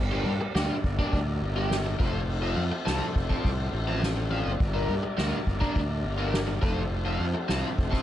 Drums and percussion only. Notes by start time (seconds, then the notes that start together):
0.26 ride
0.55 snare, ride
0.84 kick, ride
0.99 kick
1.13 kick, ride
1.42 ride
1.71 snare, ride
2.00 kick, ride
2.29 ride
2.57 ride
2.87 snare, ride
3.16 kick, ride
3.30 kick
3.45 kick, ride
3.74 ride
4.03 snare, ride
4.32 ride
4.60 kick, ride
4.89 ride
5.18 snare, ride
5.47 kick, ride
5.62 kick
5.76 kick, ride
6.05 ride
6.34 snare, ride
6.63 kick, ride
6.91 ride
7.21 ride
7.49 snare, ride
7.78 kick, ride
7.93 kick, snare